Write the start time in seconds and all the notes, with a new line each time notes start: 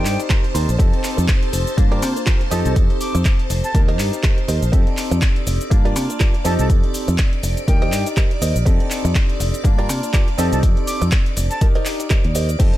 Already playing: D#4 G4 A#4 C5 D5 G5 A5
0.05 G2, clap, open hi-hat, cabasa
0.19 muted clean electric guitar stroke, closed hi-hat, cabasa
0.29 D#4 G4 A#4 C5, kick, clap, closed hi-hat, cabasa
0.44 closed hi-hat
0.55 D#2 D#4 G4 A#4 C5, open hi-hat, cabasa
0.69 A#1, closed hi-hat, cabasa
0.79 F2 C4 D#4 G4 A4, muted clean electric guitar stroke, kick, closed hi-hat, cabasa
0.93 muted clean electric guitar stroke, closed hi-hat
1.04 clap, open hi-hat, cabasa
1.17 F2, muted clean electric guitar stroke, closed hi-hat, cabasa
1.28 muted clean electric guitar stroke, kick, clap, closed hi-hat, cabasa
1.43 closed hi-hat
1.53 F1, muted clean electric guitar stroke, open hi-hat, cabasa
1.67 closed hi-hat, cabasa
1.77 G2 A#3 D4 F4 A5, kick, closed hi-hat, cabasa
1.92 F4 G4 A#4 D5, closed hi-hat
2.02 C3, open hi-hat, cabasa
2.16 muted clean electric guitar stroke, closed hi-hat, cabasa
2.26 F4 G4 A#4 C5, kick, clap, closed hi-hat, cabasa
2.41 closed hi-hat
2.51 F2 C4 D#4 F4 G4 A4 C5 D#5 A5, open hi-hat, cabasa
2.65 C2 A5, closed hi-hat, cabasa
2.76 F2, kick, closed hi-hat, cabasa
2.90 muted clean electric guitar stroke, closed hi-hat
3.01 D6, open hi-hat, cabasa
3.15 F2, muted clean electric guitar stroke, closed hi-hat, cabasa
3.25 muted clean electric guitar stroke, kick, clap, closed hi-hat, cabasa
3.39 closed hi-hat
3.50 F1, muted clean electric guitar stroke, open hi-hat, cabasa
3.64 A5, closed hi-hat, cabasa
3.74 D#2 D#4 G4 A#4, kick, closed hi-hat, cabasa
3.88 G4 A#4 C5 D#5, closed hi-hat
3.99 G2, clap, open hi-hat, cabasa
4.13 muted clean electric guitar stroke, closed hi-hat, cabasa
4.23 G4 A#4 C5 D#5, kick, clap, closed hi-hat, cabasa
4.38 closed hi-hat
4.48 D#2 G4 A#4 C5 D#5, open hi-hat, cabasa
4.62 A#1, closed hi-hat, cabasa
4.72 F2 C4 D#4 G4 A4 D5 D6, muted clean electric guitar stroke, kick, closed hi-hat, cabasa
4.87 muted clean electric guitar stroke, closed hi-hat
4.97 clap, open hi-hat, cabasa
5.11 F2, muted clean electric guitar stroke, closed hi-hat, cabasa
5.22 muted clean electric guitar stroke, kick, clap, closed hi-hat, cabasa
5.36 closed hi-hat
5.47 F1, muted clean electric guitar stroke, open hi-hat, cabasa
5.61 closed hi-hat, cabasa
5.70 G2 A#3 D4 F4 A5, kick, closed hi-hat, cabasa
5.85 F4 G4 A#4 D5, closed hi-hat
5.96 C3, open hi-hat, cabasa
6.10 muted clean electric guitar stroke, closed hi-hat, cabasa
6.20 F4 G4 A#4 D5, kick, clap, closed hi-hat, cabasa
6.34 closed hi-hat
6.44 F2 C4 D#4 F4 G4 A4 C5 D#5 A5, open hi-hat, cabasa
6.59 C2 A5, closed hi-hat, cabasa
6.70 F2, kick, closed hi-hat, cabasa
6.83 muted clean electric guitar stroke, closed hi-hat
6.94 open hi-hat, cabasa
7.08 F2, muted clean electric guitar stroke, closed hi-hat, cabasa
7.18 muted clean electric guitar stroke, kick, clap, closed hi-hat, cabasa
7.33 closed hi-hat
7.43 F1, muted clean electric guitar stroke, open hi-hat, cabasa
7.57 closed hi-hat, cabasa
7.68 D#2 D#4 G4 A#4 G5, kick, closed hi-hat, cabasa
7.82 G4 A#4 C5 D#5, closed hi-hat
7.92 G2, clap, open hi-hat, cabasa
8.06 muted clean electric guitar stroke, closed hi-hat, cabasa
8.17 G4 A#4 C5 D#5, kick, clap, closed hi-hat, cabasa
8.31 closed hi-hat
8.42 D#2 G4 A#4 C5 D#5, open hi-hat, cabasa
8.56 A#1, closed hi-hat, cabasa
8.65 F2 C4 D#4 G4 A4, muted clean electric guitar stroke, kick, closed hi-hat, cabasa
8.80 muted clean electric guitar stroke, closed hi-hat
8.90 clap, open hi-hat, cabasa
9.05 F2, muted clean electric guitar stroke, closed hi-hat, cabasa
9.15 muted clean electric guitar stroke, kick, clap, closed hi-hat, cabasa
9.30 closed hi-hat
9.40 F1, muted clean electric guitar stroke, open hi-hat, cabasa
9.54 closed hi-hat, cabasa
9.64 G2 A#3 D4 F4 A5, kick, closed hi-hat, cabasa
9.79 F4 G4 A#4 D5, closed hi-hat
9.89 C3, open hi-hat, cabasa
10.03 muted clean electric guitar stroke, closed hi-hat, cabasa
10.13 F4 G4 A#4 D5, kick, clap, closed hi-hat, cabasa
10.28 closed hi-hat
10.38 F2 C4 D#4 F4 G4 A4 C5 D#5 A5, open hi-hat, cabasa
10.52 C2 A5, closed hi-hat, cabasa
10.63 kick, closed hi-hat, cabasa
10.77 muted clean electric guitar stroke, closed hi-hat
10.87 D6, open hi-hat, cabasa
11.02 F2, muted clean electric guitar stroke, closed hi-hat, cabasa
11.12 muted clean electric guitar stroke, kick, clap, closed hi-hat, cabasa
11.26 closed hi-hat
11.37 F1, muted clean electric guitar stroke, open hi-hat, cabasa
11.50 A5, closed hi-hat, cabasa
11.61 D#4 G4 A#4, kick, closed hi-hat, cabasa
11.75 G4 A#4 C5 D#5, closed hi-hat
11.85 clap, open hi-hat, cabasa
12.00 muted clean electric guitar stroke, closed hi-hat, cabasa
12.10 G4 A#4 C5 D#5, kick, clap, closed hi-hat, cabasa
12.24 D#2, closed hi-hat
12.35 G4 A#4 C5 D#5, open hi-hat, cabasa
12.49 closed hi-hat, cabasa
12.59 F2 C4 D#4 G4 A4 C5 A5, muted clean electric guitar stroke, kick, closed hi-hat, crash, cabasa
12.74 muted clean electric guitar stroke, closed hi-hat